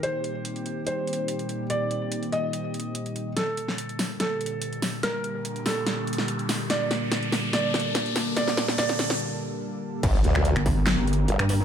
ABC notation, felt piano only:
X:1
M:4/4
L:1/8
Q:1/4=144
K:Gm
V:1 name="Felt piano"
c4 c4 | d3 e4- e | A4 A4 | B3 A4- A |
d4 d4 | d2 d2 z4 | z8 |]